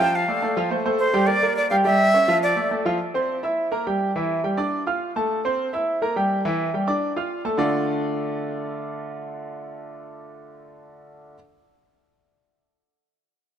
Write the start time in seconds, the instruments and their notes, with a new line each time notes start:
Already playing: flute G5
0.00 grand piano F3 F4 F5
0.15 flute F5
0.28 grand piano A3 A4 D5
0.42 grand piano A3 A4 D5
0.57 grand piano F3 F4 F5
0.71 grand piano A3 A4 C5
0.85 grand piano A3 A4 C5
0.99 flute C5
1.14 grand piano G3 G4 G5
1.27 grand piano A#3 A#4 D5, flute D5
1.43 grand piano A#3 A#4 D5
1.56 flute D5
1.70 grand piano G3 G4 G5, flute F5
1.85 grand piano G3 G4 G5, flute E5
2.14 grand piano C#4 C#5 E5
2.28 grand piano F3 F4 F5
2.43 flute D5
2.56 grand piano A3 A4 D5
2.71 grand piano A3 A4 D5
2.85 grand piano F3 F4 F5
3.14 grand piano C4 C5 C6
3.43 grand piano E4 E5 E6
3.72 grand piano A#3 A#4 A#5
3.87 grand piano G3 G4 G5
4.16 grand piano E3 E4 E5
4.44 grand piano G3 G4 G5
4.57 grand piano D4 D5 D6
4.87 grand piano F4 F5 F6
5.16 grand piano A3 A4 A5
5.45 grand piano C4 C5 C6
5.73 grand piano E4 E5 E6
6.02 grand piano A#3 A#4 A#5
6.16 grand piano G3 G4 G5
6.45 grand piano E3 E4 E5
6.74 grand piano G3 G4 G5
6.87 grand piano D4 D5 D6
7.16 grand piano F4 F5 F6
7.45 grand piano A3 A4 A5
7.57 grand piano D3 A3 D4 F4 A4 D5